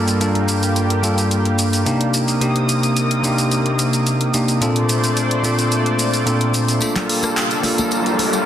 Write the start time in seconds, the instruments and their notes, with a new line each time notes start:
Already playing: tine electric piano G2 A#3 D4 F4 A4, analog synth pad G3 A#3 F4 A4
0.08 closed hi-hat, shaker
0.20 tine electric piano G2 A#3 D4 F4 A4, analog synth pad G4, closed hi-hat, shaker
0.35 closed hi-hat
0.49 closed hi-hat, shaker
0.63 closed hi-hat, shaker
0.76 closed hi-hat, shaker
0.90 closed hi-hat
1.03 tine electric piano G2 A#3 D4 F4 A4, closed hi-hat, shaker
1.18 closed hi-hat, shaker
1.31 closed hi-hat, shaker
1.45 closed hi-hat
1.59 closed hi-hat, shaker
1.73 closed hi-hat, shaker
1.86 tine electric piano C3 A#3 D4 D#4 G4, closed hi-hat, shaker
2.01 closed hi-hat
2.14 analog synth pad C3 A#3 D#6, closed hi-hat, shaker
2.28 closed hi-hat, shaker
2.40 tine electric piano C3 A#3 D4 D#4 G4, closed hi-hat, shaker
2.56 closed hi-hat
2.69 closed hi-hat, shaker
2.83 closed hi-hat, shaker
2.96 closed hi-hat, shaker
3.11 closed hi-hat
3.23 tine electric piano C3 A#3 D4 D#4 G4, closed hi-hat, shaker
3.38 closed hi-hat, shaker
3.51 closed hi-hat, shaker
3.66 closed hi-hat
3.79 closed hi-hat, shaker
3.93 closed hi-hat, shaker
4.07 closed hi-hat, shaker
4.21 closed hi-hat
4.34 tine electric piano C3 A#3 D4 D#4 G4, closed hi-hat, shaker
4.48 closed hi-hat, shaker
4.61 tine electric piano A#2 C4 D4 F4 A4, analog synth pad A#2 A3 C5 D5, closed hi-hat, shaker
4.76 closed hi-hat
4.89 closed hi-hat, shaker
5.04 closed hi-hat, shaker
5.17 closed hi-hat, shaker
5.31 closed hi-hat
5.43 tine electric piano A#2 C4 D4 F4 A4, closed hi-hat, shaker
5.59 closed hi-hat, shaker
5.72 closed hi-hat, shaker
5.86 closed hi-hat
5.99 closed hi-hat, shaker
6.14 closed hi-hat, shaker
6.26 tine electric piano A#2 C4 D4 F4 A4, closed hi-hat, shaker
6.41 closed hi-hat
6.54 closed hi-hat, shaker
6.68 closed hi-hat, shaker
6.81 analog synth pad G3 A#3 F4 A4, tine electric piano A#3 D4 F4 A4, closed hi-hat, tambourine, riser
6.96 clap, closed hi-hat, tambourine, low conga
7.09 open hi-hat
7.23 cross-stick, closed hi-hat, tambourine, muted conga
7.37 clap, closed hi-hat, tambourine
7.50 closed hi-hat, tambourine
7.63 tine electric piano A#3 D4 F4 A4, open hi-hat, muted conga
7.78 closed hi-hat, tambourine, high conga
7.91 closed hi-hat, tambourine
8.06 closed hi-hat, tambourine
8.19 open hi-hat, muted conga
8.33 closed hi-hat, tambourine